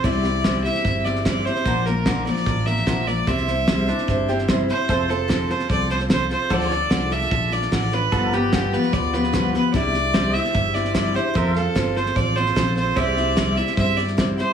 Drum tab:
HH |----p-------p---|----p-------p---|----p-------p---|----p-------p---|
SD |o-o-o-ooo-ooo-oo|o-o-o-ooo-ooo-o-|ooo-o-ooo-ooo-o-|o-o-o-ooo-ooo-o-|
BD |o---o---o---o---|o---o---o---o---|o---o---o---o---|o---o---o---o---|

HH |----p-------p---|----p-------p---|----p-------p---|----p-------p---|
SD |ooo-o-ooo-ooo-o-|o-o-o-ooo-ooo-o-|o-o-o-ooo-ooo-o-|o-o-o-ooo-ooo-o-|
BD |o---o---o---o---|o---o---o---o---|o---o---o---o---|o---o---o---o---|

HH |----p-------p---|
SD |o-o-o-ooo-ooo-o-|
BD |o---o---o---o---|